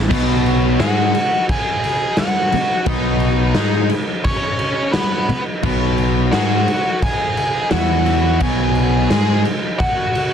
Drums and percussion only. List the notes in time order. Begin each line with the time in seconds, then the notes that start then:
0.11 kick, crash
0.46 crash
0.80 snare, crash
1.15 crash
1.49 kick, crash
1.84 crash
2.17 snare, crash
2.52 crash
2.86 kick, crash
3.20 crash
3.55 snare, crash
3.89 crash
4.24 kick, crash
4.59 crash
4.93 snare, crash
5.29 crash
5.63 kick, crash
5.98 crash
6.33 snare, crash
6.68 crash
7.02 kick, crash
7.37 crash
7.71 snare, crash
8.06 crash
8.40 kick, crash
8.75 crash
9.10 snare, crash
9.45 crash
9.80 kick, crash
10.15 crash